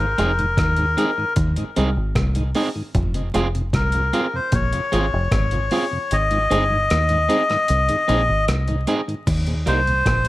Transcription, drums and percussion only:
0.18 closed hi-hat
0.39 closed hi-hat
0.57 kick, cross-stick, closed hi-hat
0.76 closed hi-hat
0.98 closed hi-hat
1.36 kick, closed hi-hat
1.56 closed hi-hat
1.76 closed hi-hat
2.15 kick, cross-stick, closed hi-hat
2.35 closed hi-hat
2.55 open hi-hat
2.95 kick, closed hi-hat
3.14 closed hi-hat
3.34 closed hi-hat
3.55 closed hi-hat
3.73 kick, cross-stick, closed hi-hat
3.92 closed hi-hat
4.13 closed hi-hat
4.52 kick, closed hi-hat
4.73 closed hi-hat
4.93 closed hi-hat
5.32 kick, cross-stick, closed hi-hat
5.51 closed hi-hat
5.71 open hi-hat
6.11 closed hi-hat
6.31 closed hi-hat
6.51 closed hi-hat
6.90 cross-stick, closed hi-hat
7.09 closed hi-hat
7.30 closed hi-hat
7.50 cross-stick, closed hi-hat
7.68 closed hi-hat
7.89 closed hi-hat
8.09 closed hi-hat
8.48 cross-stick, closed hi-hat
8.68 closed hi-hat
8.87 closed hi-hat
9.09 closed hi-hat
9.27 kick, closed hi-hat, crash
9.47 closed hi-hat
9.67 closed hi-hat
9.87 closed hi-hat
10.06 kick, cross-stick, closed hi-hat
10.25 closed hi-hat

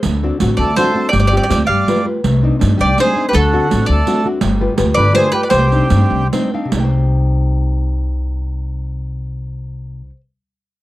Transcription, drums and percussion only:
0.03 riq
0.40 riq
0.59 riq
0.77 riq
1.13 riq
1.50 riq
1.88 riq
2.24 riq
2.61 riq
2.79 riq
2.98 riq
3.33 riq
3.71 riq
3.88 riq
4.07 riq
4.41 riq
4.78 riq
4.96 riq
5.15 riq
5.51 riq
5.72 riq
5.90 riq
6.33 riq
6.72 riq

